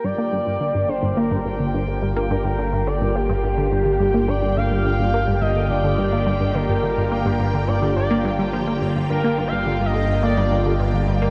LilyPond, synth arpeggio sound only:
\new Staff \with { instrumentName = "Synth arpeggio sound" } { \clef bass \time 4/4 \key g \minor \tempo 4 = 106 g,16 bes16 g,16 g,16 d16 g,16 d16 g,16 bes16 g,16 g,16 d16 g,16 d16 g,16 bes16 | g,16 g,16 d16 g,16 d16 g,16 bes16 g,16 g,16 d16 g,16 d16 g,16 bes16 g,16 g,16 | d16 g,16 d16 g,16 bes16 g,16 g,16 d16 g,16 d16 g,16 bes16 g,16 g,16 d16 g,16 | d16 g,16 bes16 g,16 g,16 d16 g,16 d16 g,16 bes16 g,16 g16 f16 bes16 g,16 g,16 |
g,16 bes16 g,16 g,16 d16 g,16 d16 g,16 bes16 g,16 g,16 d16 g,16 d16 g,16 bes16 | }